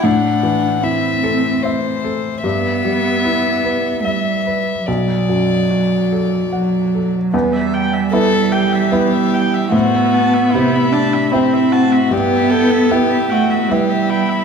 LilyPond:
<<
  \new Staff \with { instrumentName = "Viola" } { \time 3/4 \key e \minor \tempo 4 = 75 r2. | r2. | r2. | b'16 e''16 g''16 e''16 b'16 e''16 g''16 e''16 b'16 e''16 g''16 e''16 |
c''16 e''16 a''16 e''16 c''16 e''16 a''16 e''16 c''16 e''16 a''16 e''16 | b'16 e''16 g''16 e''16 b'16 e''16 g''16 e''16 b'16 e''16 g''16 e''16 | }
  \new Staff \with { instrumentName = "Violin" } { \time 3/4 \key e \minor fis''4 e''4 c''4 | e''2 e''4 | d''2~ d''8. r16 | r4 a'8 g'4. |
fis'4 e'4 e'8 fis'8 | g'8 a'8 g'8 fis'8 g'8 e'8 | }
  \new Staff \with { instrumentName = "Analog synth pad" } { \time 3/4 \key e \minor << { r2. | r2. | r2. | <e' e''>2.~ |
<e' e''>2. | <e' e''>2. | } \\ { r2. | r2. | r2. | b2. |
a2. | b2. | } >> }
  \new Staff \with { instrumentName = "Felt piano" } { \time 3/4 \key e \minor a,8 e8 e'8 a'8 e''8 a'8 | g,8 g8 e'8 b'8 e''8 b'8 | b,,8 fis,8 fis'8 a'8 fis''8 a'8 | e,4 <b e' e''>4 <b e' e''>4 |
a,4 <c e' e''>4 <c' e' e''>4 | g,4 <b e' e''>4 <b e' e''>4 | }
  \new Staff \with { instrumentName = "Cello" } { \time 3/4 \key e \minor d'4 c'4. r8 | b2 g4 | fis2 fis4 | g2. |
b4. d'8 c'4 | b4. a8 g4 | }
>>